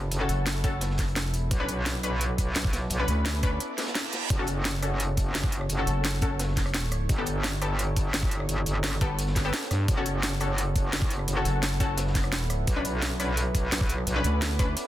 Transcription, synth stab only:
0.20 C#4 F#4 A4
0.64 C#4 F#4 A4
1.60 C#4 D4 B4
2.03 C#4 D4 B4
2.99 C#4 D4 B4
3.43 C#4 D4 B4
4.39 C#4 F#4 A4
4.83 C#4 F#4 A4
5.78 C#4 F#4 A4
6.22 C#4 F#4 A4
7.18 B3 G4 A4
7.62 B3 G4 A4
9.01 B3 G4 A4
9.45 B3 G4 A4
9.97 C#4 F#4 A4
10.41 C#4 F#4 A4
11.37 C#4 F#4 A4
11.80 C#4 F#4 A4
12.76 C#4 D4 B4
13.20 C#4 D4 B4
14.16 C#4 D4 B4
14.59 C#4 D4 B4

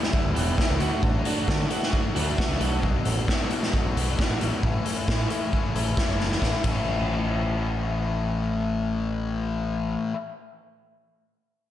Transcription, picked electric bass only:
0.24 D2
0.37 E1
0.70 C#2
0.81 D2
1.04 A1
1.48 D3
2.15 D2
2.48 C#2
2.60 B1
3.05 A1
3.85 A1
3.96 B1
4.30 A1
4.43 A1
4.63 A1
5.08 A2
5.75 A1
6.08 F#1
6.43 A1
6.64 A1

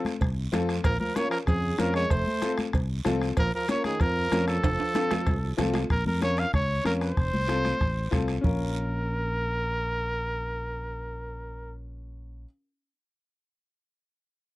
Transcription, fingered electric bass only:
0.21 C2
0.53 F2
0.84 A#1
1.48 F2
1.79 F2
2.11 F1
2.74 C2
3.06 C2
3.37 A#1
4.00 F2
4.32 F2
4.64 F1
5.27 C2
5.58 C2
5.90 A#1
6.06 F2
6.53 C#2
6.85 F2
7.17 F1
7.34 C2
7.81 A1
8.12 C2
8.44 A#1

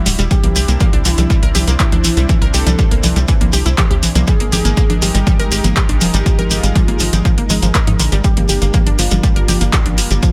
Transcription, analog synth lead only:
0.31 G4
1.05 E4
1.80 E4
2.54 A4
4.27 G#4
5.02 G4
5.76 G4
6.51 F4
8.24 G4
8.99 F4
9.73 F4

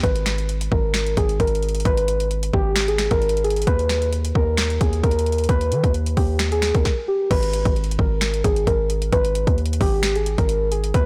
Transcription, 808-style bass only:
0.03 G#1
0.72 G#1
1.17 G#1
1.40 G#1
1.85 G#1
2.53 G#1
3.11 G#1
3.67 D#2
4.35 D#2
4.81 D#2
5.04 D#2
5.49 D#2
5.72 D#3
5.84 D#2
6.17 D#2
6.75 D#2
7.31 G#1
7.65 G#1
7.99 G#1
8.44 G#1
8.67 G#1
9.12 G#1
9.47 D#2
9.81 G#1
10.38 G#1
10.94 D#2

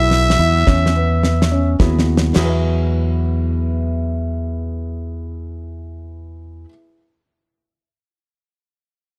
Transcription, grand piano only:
Already playing: E4
0.39 E4
0.67 C#4
0.95 B3
1.52 C#4
1.80 B3
2.36 E4
2.40 G#4 B4
2.48 E5

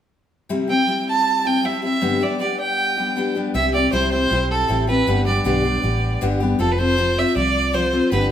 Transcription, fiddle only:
0.70 G5
1.09 A5
1.47 G5
1.65 E5
1.84 E5
2.22 D5
2.41 D5
2.60 G5
3.54 E5
3.74 D5
3.92 C5
4.11 C5
4.50 A4
4.88 B4
5.26 D5
5.46 D5
6.60 A4
6.71 B4
6.79 C5
7.18 E5
7.36 D5
7.74 C5
8.11 B4

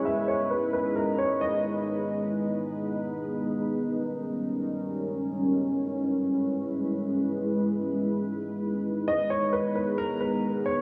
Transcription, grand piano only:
0.05 E5
0.28 C#5
0.51 B4
0.73 B4
0.96 A#4
1.18 C#5
1.41 D#5
9.08 D#5
9.30 C#5
9.53 B4
9.75 B4
9.98 A#4
10.20 B4
10.66 C#5

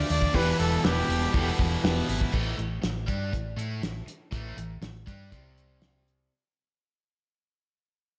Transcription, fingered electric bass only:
0.10 D#2
0.34 E1
0.59 E1
0.84 E1
1.09 E1
1.34 E1
1.59 E1
1.84 E1
2.09 G#1
2.34 A1
2.58 A1
2.83 A1
3.08 G2
3.33 A1
3.57 A2
3.82 A1
4.32 A1
4.57 A1
4.81 A1
5.07 G2
5.32 C2

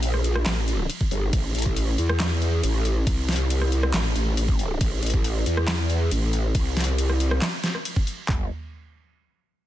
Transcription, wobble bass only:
Already playing: A#1
0.46 A1
1.11 G1
1.33 A1
1.55 A1
1.98 E2
2.63 A1
3.07 C2
3.94 A1
4.16 A1
4.81 A1
5.03 A1
5.46 E2
6.11 A1
6.55 C2
8.29 G1

